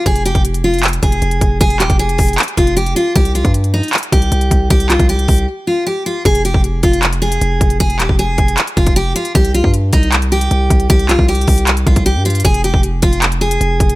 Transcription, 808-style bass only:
\new Staff \with { instrumentName = "808-style bass" } { \clef bass \time 4/4 \key f \minor \tempo 4 = 155 f,,8. f,,4.~ f,,16 f,,8 f,,8 f,,8 | f,,8 ees,,16 f,,8. f,,8 r8 f,,4 r8 | c,8. g,4 r8. c,8 c,8 c,8 | c,8. c,8. c,8 r2 |
f,,8. f,,8. f,,4. f,,8 f,,8 | f,,8 ees,,16 f,,8. f,,8 r8 f,,4 r8 | c,8. g,8. c,4. c,8 c,8 | c,8. c,8. c,4 c,8. g,8. |
f,,8. f,,8. f,,4. f,,8 f,,8 | }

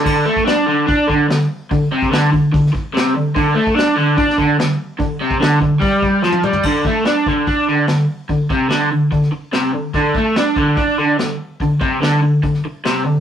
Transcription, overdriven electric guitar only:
\new Staff \with { instrumentName = "Overdriven electric guitar" } { \clef bass \time 4/4 \key c \lydian \tempo 4 = 145 d8 a8 d'8 d8 d'8 d8 d8 r8 | d8 c8 d8 d8 d8 r8 c8 d8 | d8 a8 d'8 d8 d'8 d8 d8 r8 | d8 c8 d8 d8 g4 f8 g8 |
d8 a8 d'8 d8 d'8 d8 d8 r8 | d8 c8 d8 d8 d8 r8 c8 d8 | d8 a8 d'8 d8 d'8 d8 d8 r8 | d8 c8 d8 d8 d8 r8 c8 d8 | }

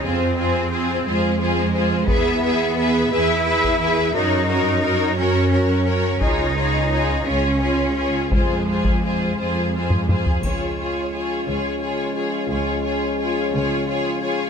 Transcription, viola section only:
\new Staff \with { instrumentName = "Viola section" } { \time 6/8 \key des \major \tempo 4. = 58 f'8 f'8 f'8 f'8 f'8 f'8 | gis'8 gis'8 gis'8 gis'8 gis'8 gis'8 | ges'8 ges'8 ges'8 ges'8 ges'8 ges'8 | f'8 f'8 f'8 f'8 f'8 f'8 |
f'8 f'8 f'8 f'8 f'8 f'8 | f'8 f'8 f'8 f'8 f'8 f'8 | f'8 f'8 f'8 f'8 f'8 f'8 | }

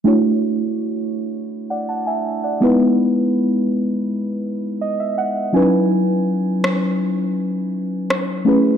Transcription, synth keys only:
\new Staff \with { instrumentName = "Synth keys" } { \time 4/4 \key cis \minor \tempo 4 = 82 << { r2 r16 <d'' fis''>16 <fis'' a''>16 <e'' gis''>8 <d'' fis''>8 r16 | r2 r8 dis''16 e''16 fis''8 gis''8 | r1 | } \\ { <a d' e' fis' cis''>2.~ <a d' e' fis' cis''>8 <gis b dis' e' b'>8~ | <gis b dis' e' b'>2.~ <gis b dis' e' b'>8 <fis cis' dis' e' b'>8~ | <fis cis' dis' e' b'>2.~ <fis cis' dis' e' b'>8 <a cis' e' gis' b'>8 | } >> }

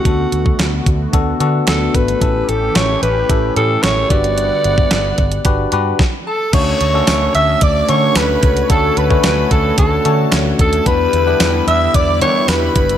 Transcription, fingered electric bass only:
\new Staff \with { instrumentName = "Fingered electric bass" } { \clef bass \time 4/4 \key d \major \tempo 4 = 111 d,8 d,8 d,8 d,8 d,8 d8 d,8 gis,,8 | a,,8 a,,8 a,,8 a,,8 a,,8 a,8 a,,8 g,,8~ | g,,8 g,,8 g,,8 g,,8 g,,8 g,8 r4 | d,8 d,8 d,8 d,8 d,8 d8 d,8 cis,8 |
d,8 d,8 d,8 d,8 d,8 d8 d,8 ees,8 | e,8 e,8 e,8 e,8 e,8 e8 e,8 fis,,8 | }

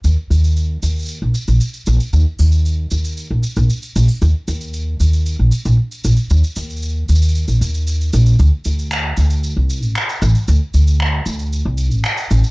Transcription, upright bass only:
\new Staff \with { instrumentName = "Upright bass" } { \clef bass \time 4/4 \key d \phrygian \tempo 4 = 115 ees,16 r16 ees,4 ees,8. bes,,16 r16 bes,,16 r8 bes,,16 r16 | ees,16 r16 ees,4 ees,8. bes,,16 r16 bes,,16 r8 bes,,16 r16 | ees,16 r16 ees,4 ees,8. bes,,16 r16 bes,,16 r8 bes,,16 r16 | ees,16 r16 ees,4 ees,8. bes,,16 ees,4 bes,,8 |
d,16 r16 d,4 d,8. c,8 a,,16 r8 a,,16 r16 | d,16 r16 d,4 d,8. c,8 a,,16 r8 a,,16 r16 | }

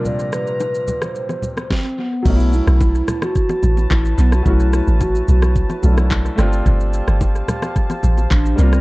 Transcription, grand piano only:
\new Staff \with { instrumentName = "Grand piano" } { \time 4/4 \key g \lydian \tempo 4 = 109 <bes, c f g d'>2. r4 | <fis a cis' dis' e'>1 | <fis a cis' fis'>2~ <fis a cis' fis'>8 <fis a cis' d' e'>4 <a c' d' f'>8~ | <a c' d' f'>2.~ <a c' d' f'>8 <g bes d' f'>8 | }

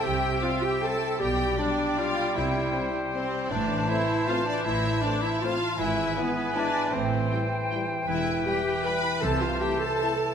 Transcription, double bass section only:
\new Staff \with { instrumentName = "Double bass section" } { \clef bass \time 3/4 \key a \minor \tempo 4 = 156 c,4 r2 | b,,4 r2 | c,4 r2 | a,,4 r2 |
a,,4 r2 | gis,,4 r2 | a,,4 r2 | e,,4 r2 |
c,4 r2 | }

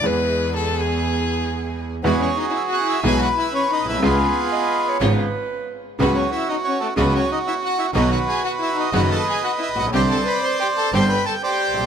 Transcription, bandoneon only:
\new Staff \with { instrumentName = "Bandoneon" } { \time 4/4 \key e \mixolydian \tempo 4 = 121 << { r1 | \key e \major \tuplet 3/2 { b'8 cis''8 dis''8 e''8 fis''8 e''8 gis''8 fis''8 e''8 cis''8 dis''8 e''8 } | b'2 r2 | \tuplet 3/2 { b'8 cis''8 e''8 dis''8 cis''8 a'8 b'8 cis''8 dis''8 e''8 fis''8 e''8 } |
\tuplet 3/2 { dis''8 fis''8 gis''8 fis''8 e''8 dis''8 fis''8 a''8 gis''8 fis''8 e''8 fis''8 } | \tuplet 3/2 { g''8 a''8 b''8 c'''8 g''8 a''8 c'''8 b''8 a''8 } g''4 | } \\ { r1 | <fis' gis'>2 b'2 | <eis' gis'>2 r2 | fis'2 fis'2 |
<fis' b'>2 <b' dis''>2 | <c'' d''>2 g''4 <c'' d''>4 | } >> }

